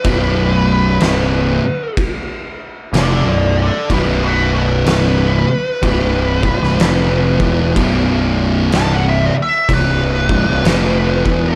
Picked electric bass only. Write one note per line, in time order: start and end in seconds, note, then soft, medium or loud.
0.04 0.97 B0 loud
1.01 1.58 C1 loud
2.92 3.22 F1 medium
3.23 3.69 B0 medium
3.90 4.83 B0 loud
4.86 5.43 C1 loud
5.83 6.40 C1 medium
6.43 6.60 B0 medium
6.61 6.78 C1 medium
6.79 7.36 F1 medium
7.40 7.74 E1 medium
7.76 8.69 B0 loud
8.72 9.29 C1 loud
9.69 10.25 C1 medium
10.29 10.46 B0 medium
10.48 10.64 C1 medium
10.65 11.22 F1 loud
11.26 11.55 E1 medium